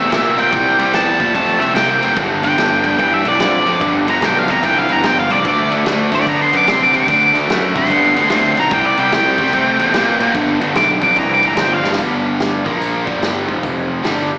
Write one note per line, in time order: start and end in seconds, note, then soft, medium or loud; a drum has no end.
0.00 0.36 E5 loud
0.10 0.34 A#2 medium
0.10 0.34 C3 medium
0.10 0.34 A#3 medium
0.10 snare loud
0.10 crash medium
0.36 0.51 A#2 medium
0.36 0.49 C3 medium
0.36 0.50 A#3 medium
0.36 0.93 G5 medium
0.36 crash medium
0.51 0.76 C2 loud
0.51 0.75 C3 medium
0.51 0.75 G3 medium
0.51 kick loud
0.51 crash medium
0.79 0.92 C2 medium
0.79 0.91 C3 medium
0.79 0.92 G3 medium
0.79 crash medium
0.93 1.17 E2 medium
0.93 1.17 C3 loud
0.93 1.17 G3 medium
0.93 1.34 A5 medium
0.93 snare loud
0.93 crash medium
1.19 1.33 A#2 loud
1.19 1.32 C3 medium
1.19 1.33 G3 medium
1.19 kick medium
1.19 crash medium
1.33 1.58 F2 loud
1.33 1.58 C3 medium
1.33 1.58 A3 medium
1.33 1.60 A5 medium
1.33 kick medium
1.33 crash medium
1.59 1.74 C2 medium
1.59 1.73 C3 medium
1.59 1.74 A3 medium
1.59 1.74 E5 loud
1.59 crash medium
1.74 1.99 C2 loud
1.74 1.99 C3 medium
1.74 1.99 A#3 loud
1.74 2.15 G5 loud
1.74 snare loud
1.74 crash medium
2.00 2.15 F1 medium
2.00 2.14 C3 medium
2.00 2.15 A#3 medium
2.00 crash medium
2.16 2.40 G1 medium
2.16 2.40 G2 medium
2.16 2.40 D3 medium
2.16 kick loud
2.16 crash medium
2.43 2.56 G1 medium
2.43 2.56 G2 medium
2.43 2.56 D3 loud
2.43 2.97 G5 loud
2.43 crash medium
2.57 2.81 G1 medium
2.57 2.81 G2 medium
2.57 2.81 D3 loud
2.57 snare loud
2.57 crash medium
2.83 2.97 G1 medium
2.83 2.97 G2 medium
2.83 2.97 D3 medium
2.83 kick medium
2.83 crash medium
2.98 3.22 G2 medium
2.98 3.22 G2 loud
2.98 3.22 E3 medium
2.98 3.14 G5 loud
2.98 kick medium
2.98 crash medium
3.14 3.26 E5 medium
3.24 3.38 B1 medium
3.24 3.38 G2 medium
3.24 3.38 E3 medium
3.24 3.40 D5 medium
3.24 crash medium
3.39 3.63 F2 loud
3.39 3.63 G2 medium
3.39 3.63 F3 medium
3.39 3.80 D5 loud
3.39 snare loud
3.39 crash medium
3.65 3.79 F2 medium
3.65 3.79 G2 medium
3.65 3.79 F3 medium
3.65 crash medium
3.80 4.04 G1 medium
3.80 4.04 G2 medium
3.80 4.04 D3 medium
3.80 kick loud
3.80 crash medium
4.07 4.20 G1 medium
4.07 4.20 G2 medium
4.07 4.20 D3 medium
4.07 4.26 A#5 loud
4.07 crash medium
4.22 4.45 B1 medium
4.22 4.45 G2 medium
4.22 4.45 D3 loud
4.22 snare loud
4.22 crash medium
4.26 4.39 G5 medium
4.39 4.50 F5 medium
4.48 4.61 F2 medium
4.48 4.61 G2 medium
4.48 4.61 D3 medium
4.48 4.63 A#5 medium
4.48 kick medium
4.48 snare soft
4.48 crash medium
4.63 4.86 C2 loud
4.63 4.86 G2 medium
4.63 4.86 E3 medium
4.63 4.78 G5 medium
4.63 kick medium
4.63 crash medium
4.78 4.91 F5 medium
4.89 5.02 G1 medium
4.89 5.02 G2 medium
4.89 5.02 E3 medium
4.89 5.04 A#5 medium
4.89 crash medium
5.03 5.27 G1 medium
5.03 5.27 G2 medium
5.03 5.27 F3 medium
5.03 5.18 G5 loud
5.03 snare loud
5.03 crash medium
5.19 5.31 F5 medium
5.30 5.44 C2 medium
5.30 5.43 G2 medium
5.30 5.43 F3 medium
5.30 5.71 D5 loud
5.30 crash medium
5.44 5.68 D2 loud
5.44 5.68 D3 medium
5.44 5.68 A3 medium
5.44 kick loud
5.44 crash medium
5.70 5.84 D2 medium
5.70 5.83 D3 medium
5.70 5.84 A3 medium
5.70 crash medium
5.85 6.09 D2 medium
5.85 6.09 D3 medium
5.85 6.09 A3 medium
5.85 snare loud
5.85 crash medium
6.12 6.25 D2 loud
6.12 6.25 D3 medium
6.12 6.25 A3 medium
6.12 6.27 D5 medium
6.12 kick medium
6.12 snare soft
6.12 crash medium
6.20 snare soft
6.26 6.50 D3 medium
6.26 6.50 B3 loud
6.26 6.41 A#5 medium
6.26 kick medium
6.26 crash medium
6.42 6.57 C6 loud
6.53 6.66 F#2 medium
6.53 6.66 D3 medium
6.53 6.66 B3 medium
6.53 crash medium
6.57 6.70 D6 loud
6.67 6.91 C3 medium
6.67 6.91 D3 medium
6.67 6.91 C4 medium
6.67 6.82 C6 loud
6.67 snare loud
6.67 crash medium
6.83 6.95 D6 loud
6.93 7.07 C3 medium
6.93 7.06 D3 medium
6.93 7.07 C4 medium
6.93 7.35 D6 loud
6.93 crash medium
7.08 7.32 D2 loud
7.08 7.32 D3 medium
7.08 7.32 A3 medium
7.08 kick loud
7.08 crash medium
7.34 7.47 D2 medium
7.34 7.48 D3 medium
7.34 7.48 A3 medium
7.34 crash medium
7.49 7.72 F#2 medium
7.49 7.73 D3 medium
7.49 7.73 A3 medium
7.49 snare loud
7.49 crash medium
7.75 7.88 C3 loud
7.75 7.88 D3 medium
7.75 7.89 A3 medium
7.75 8.56 C6 loud
7.75 kick medium
7.75 crash medium
7.85 snare soft
7.90 8.13 G2 loud
7.90 8.14 D3 medium
7.90 8.14 B3 medium
7.90 kick medium
7.90 crash medium
8.16 8.29 D2 medium
8.16 8.29 D3 medium
8.16 8.29 B3 medium
8.16 crash medium
8.30 8.54 D2 medium
8.30 8.55 D3 medium
8.30 8.55 C4 loud
8.30 snare loud
8.30 crash medium
8.57 8.70 B1 medium
8.57 8.70 D3 medium
8.57 8.70 C4 medium
8.57 8.73 A#5 loud
8.57 crash medium
8.71 8.95 C2 loud
8.71 8.95 C3 medium
8.71 8.95 G3 medium
8.71 8.86 G5 medium
8.71 kick loud
8.71 crash medium
8.86 8.99 D5 medium
8.98 9.11 C2 medium
8.98 9.11 C3 medium
8.98 9.11 G3 medium
8.98 9.12 G5 loud
8.98 crash medium
9.12 9.36 C2 medium
9.12 9.36 C3 medium
9.12 9.36 G3 loud
9.12 10.32 G5 loud
9.12 snare loud
9.12 crash medium
9.38 9.52 C2 loud
9.38 9.52 C3 medium
9.38 9.52 G3 medium
9.38 kick medium
9.38 crash medium
9.46 snare soft
9.53 9.77 C3 medium
9.53 9.77 C3 loud
9.53 9.77 A3 medium
9.53 kick loud
9.53 crash medium
9.79 9.92 E2 medium
9.79 9.93 C3 medium
9.79 9.93 A3 medium
9.79 crash medium
9.94 10.17 A#2 medium
9.94 10.18 C3 medium
9.94 10.18 A#3 loud
9.94 snare loud
9.94 crash loud
10.20 10.33 A#2 medium
10.20 10.33 C3 medium
10.20 10.33 A#3 medium
10.20 crash medium
10.34 10.58 G1 loud
10.34 10.58 G2 medium
10.34 10.58 D3 medium
10.34 kick loud
10.34 crash medium
10.60 10.74 G1 medium
10.60 10.74 G2 medium
10.60 10.74 D3 medium
10.60 crash medium
10.74 10.98 B1 medium
10.74 10.99 G2 loud
10.74 10.99 D3 loud
10.74 10.89 D6 loud
10.74 snare loud
10.74 crash medium
11.01 11.15 F2 loud
11.01 11.15 G2 medium
11.01 11.15 D3 medium
11.01 11.16 D6 medium
11.01 kick medium
11.01 crash medium
11.16 11.40 C2 loud
11.16 11.40 G2 medium
11.16 11.40 E3 medium
11.16 11.31 A#5 loud
11.16 kick loud
11.16 crash medium
11.34 11.45 D6 medium
11.41 11.55 G1 medium
11.41 11.55 G2 medium
11.41 11.56 E3 medium
11.41 crash medium
11.46 11.58 A#5 medium
11.55 11.80 G1 loud
11.55 11.80 G2 medium
11.55 11.81 F3 medium
11.55 snare loud
11.55 crash medium
11.61 11.73 G5 medium
11.74 11.99 F5 loud
11.82 11.96 G2 medium
11.82 11.97 F3 medium
11.82 snare medium
11.93 snare loud
11.97 12.62 G1 loud
11.97 12.64 G2 medium
11.97 12.63 D3 medium
11.97 12.64 G3 medium
11.97 kick loud
11.97 open hi-hat medium
12.40 snare medium
12.40 open hi-hat medium
12.64 13.04 A#1 medium
12.64 13.05 A#2 medium
12.64 13.05 F3 medium
12.64 13.06 A#3 loud
12.64 kick medium
12.81 open hi-hat medium
13.06 13.45 G1 medium
13.06 13.47 G2 medium
13.06 13.48 D3 medium
13.06 13.48 G3 medium
13.06 kick loud
13.22 snare loud
13.22 open hi-hat medium
13.47 14.00 F1 medium
13.47 14.02 F2 medium
13.47 14.03 C3 medium
13.47 14.04 F3 medium
13.47 kick medium
13.63 kick loud
13.63 open hi-hat medium
14.02 14.29 G1 medium
14.02 14.29 G2 medium
14.02 14.29 D3 loud
14.02 14.30 G3 medium
14.02 snare loud
14.02 open hi-hat soft